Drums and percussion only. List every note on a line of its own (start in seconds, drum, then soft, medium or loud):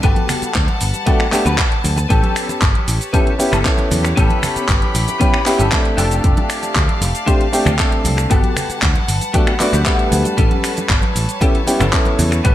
0.03 kick loud
0.03 closed hi-hat medium
0.03 muted conga medium
0.03 shaker soft
0.16 closed hi-hat soft
0.16 high conga medium
0.29 finger snap medium
0.29 open hi-hat loud
0.29 muted conga soft
0.29 low conga medium
0.29 shaker medium
0.42 closed hi-hat soft
0.42 shaker soft
0.55 kick loud
0.55 clap loud
0.55 closed hi-hat medium
0.55 shaker soft
0.68 closed hi-hat soft
0.68 muted conga medium
0.68 high conga medium
0.81 open hi-hat loud
0.81 shaker medium
0.94 closed hi-hat soft
0.94 muted conga soft
0.94 shaker soft
1.07 kick loud
1.07 closed hi-hat medium
1.07 high conga medium
1.07 shaker soft
1.20 finger snap medium
1.20 closed hi-hat soft
1.32 clap medium
1.32 open hi-hat loud
1.32 muted conga medium
1.32 shaker medium
1.46 closed hi-hat soft
1.46 high conga medium
1.46 shaker soft
1.58 kick loud
1.58 clap loud
1.58 closed hi-hat medium
1.58 muted conga soft
1.58 shaker soft
1.72 closed hi-hat soft
1.84 open hi-hat loud
1.84 high conga loud
1.84 shaker medium
1.97 closed hi-hat soft
1.97 muted conga medium
1.97 shaker soft
2.10 kick loud
2.10 closed hi-hat medium
2.10 muted conga soft
2.10 shaker soft
2.23 closed hi-hat soft
2.23 high conga loud
2.36 finger snap medium
2.36 open hi-hat loud
2.36 shaker medium
2.49 closed hi-hat soft
2.49 muted conga medium
2.49 shaker soft
2.62 kick loud
2.62 clap loud
2.62 closed hi-hat medium
2.62 shaker soft
2.75 closed hi-hat soft
2.75 muted conga soft
2.75 high conga medium
2.88 open hi-hat loud
2.88 shaker medium
3.01 closed hi-hat soft
3.01 shaker soft
3.14 kick loud
3.14 closed hi-hat medium
3.14 muted conga medium
3.14 high conga medium
3.14 shaker soft
3.27 closed hi-hat soft
3.39 open hi-hat loud
3.39 muted conga soft
3.39 shaker medium
3.52 finger snap medium
3.52 high conga medium
3.52 low conga medium
3.52 shaker soft
3.65 kick loud
3.65 clap loud
3.65 closed hi-hat medium
3.65 shaker soft
3.78 closed hi-hat soft
3.78 muted conga medium
3.91 open hi-hat loud
3.91 high conga loud
3.91 low conga medium
3.91 shaker medium
4.05 finger snap medium
4.05 closed hi-hat soft
4.05 muted conga medium
4.05 shaker soft
4.17 kick loud
4.17 closed hi-hat medium
4.17 shaker soft
4.30 closed hi-hat soft
4.30 high conga medium
4.42 finger snap medium
4.42 open hi-hat loud
4.42 muted conga medium
4.42 low conga medium
4.42 shaker medium
4.56 closed hi-hat soft
4.56 shaker soft
4.69 kick loud
4.69 clap loud
4.69 closed hi-hat medium
4.69 muted conga medium
4.69 shaker soft
4.82 closed hi-hat soft
4.82 high conga medium
4.95 open hi-hat loud
4.95 shaker medium
5.08 closed hi-hat soft
5.08 muted conga medium
5.08 shaker soft
5.21 kick loud
5.21 closed hi-hat medium
5.21 high conga medium
5.21 shaker soft
5.34 finger snap medium
5.34 closed hi-hat soft
5.34 muted conga soft
5.46 clap medium
5.46 open hi-hat loud
5.46 shaker medium
5.59 closed hi-hat soft
5.59 high conga medium
5.59 shaker soft
5.72 kick loud
5.72 clap loud
5.72 closed hi-hat medium
5.72 muted conga medium
5.72 shaker soft
5.85 closed hi-hat soft
5.98 open hi-hat loud
5.98 muted conga medium
5.98 high conga medium
5.98 shaker medium
6.11 closed hi-hat soft
6.11 shaker soft
6.24 kick loud
6.24 closed hi-hat medium
6.24 shaker soft
6.37 closed hi-hat soft
6.37 muted conga medium
6.37 high conga medium
6.50 finger snap medium
6.50 open hi-hat loud
6.50 shaker medium
6.63 closed hi-hat soft
6.63 muted conga medium
6.63 shaker soft
6.76 kick loud
6.76 clap loud
6.76 closed hi-hat loud
6.76 shaker soft
6.89 closed hi-hat soft
6.89 high conga medium
7.02 open hi-hat loud
7.02 muted conga medium
7.02 shaker medium
7.15 closed hi-hat soft
7.15 shaker soft
7.27 kick loud
7.27 closed hi-hat medium
7.27 muted conga medium
7.27 high conga medium
7.27 shaker soft
7.41 closed hi-hat soft
7.53 open hi-hat loud
7.53 shaker medium
7.65 finger snap medium
7.65 muted conga medium
7.65 high conga medium
7.65 low conga medium
7.65 shaker soft
7.79 kick loud
7.79 clap loud
7.79 closed hi-hat loud
7.79 shaker soft
7.92 closed hi-hat soft
7.92 muted conga medium
8.05 open hi-hat loud
8.05 high conga medium
8.05 low conga medium
8.05 shaker medium
8.18 finger snap medium
8.18 closed hi-hat soft
8.18 shaker soft
8.30 kick loud
8.30 closed hi-hat loud
8.30 muted conga medium
8.30 shaker soft
8.43 closed hi-hat soft
8.43 high conga medium
8.57 finger snap medium
8.57 open hi-hat loud
8.57 muted conga soft
8.57 low conga medium
8.57 shaker medium
8.70 closed hi-hat soft
8.70 shaker soft
8.82 kick loud
8.82 clap loud
8.82 closed hi-hat medium
8.82 shaker soft
8.95 closed hi-hat soft
8.95 muted conga medium
8.95 high conga medium
9.08 open hi-hat loud
9.08 shaker medium
9.21 closed hi-hat soft
9.21 muted conga medium
9.21 shaker soft
9.34 kick loud
9.34 closed hi-hat loud
9.34 high conga medium
9.34 shaker soft
9.47 finger snap medium
9.47 closed hi-hat soft
9.60 clap medium
9.60 open hi-hat loud
9.60 muted conga medium
9.60 shaker medium
9.73 closed hi-hat soft
9.73 high conga medium
9.73 shaker soft
9.86 kick loud
9.86 clap loud
9.86 closed hi-hat loud
9.86 muted conga soft
9.86 shaker soft
9.99 closed hi-hat soft
10.12 open hi-hat loud
10.12 high conga medium
10.12 shaker medium
10.25 closed hi-hat soft
10.25 muted conga medium
10.25 shaker soft
10.38 kick loud
10.38 closed hi-hat loud
10.38 muted conga medium
10.38 shaker soft
10.51 closed hi-hat soft
10.51 high conga medium
10.64 finger snap medium
10.64 open hi-hat loud
10.64 shaker medium
10.77 closed hi-hat soft
10.77 muted conga medium
10.77 shaker soft
10.89 kick loud
10.89 clap loud
10.89 closed hi-hat medium
10.89 shaker soft
11.02 closed hi-hat soft
11.02 muted conga medium
11.02 high conga medium
11.16 open hi-hat loud
11.16 shaker medium
11.29 closed hi-hat soft
11.29 shaker soft
11.41 kick loud
11.41 closed hi-hat loud
11.41 muted conga medium
11.41 high conga medium
11.41 shaker soft
11.55 closed hi-hat soft
11.67 open hi-hat loud
11.67 muted conga medium
11.67 shaker medium
11.80 finger snap medium
11.80 closed hi-hat soft
11.80 high conga medium
11.80 low conga loud
11.80 shaker soft
11.93 kick loud
11.93 clap loud
11.93 closed hi-hat loud
11.93 shaker soft
12.05 closed hi-hat soft
12.05 muted conga medium
12.19 open hi-hat loud
12.19 high conga medium
12.19 low conga medium
12.19 shaker medium
12.32 finger snap medium
12.32 closed hi-hat soft
12.32 muted conga medium
12.32 shaker soft
12.45 kick loud
12.45 closed hi-hat loud
12.45 shaker soft